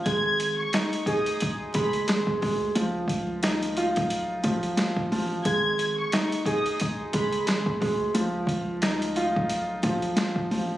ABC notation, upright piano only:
X:1
M:4/4
L:1/8
Q:"Swing 16ths" 1/4=89
K:G#dor
V:1 name="Upright piano" clef=bass
G,2 D G2 G, G, G, | E,2 D E2 E, E, E, | G,2 D G2 G, G, G, | E,2 D E2 E, E, E, |]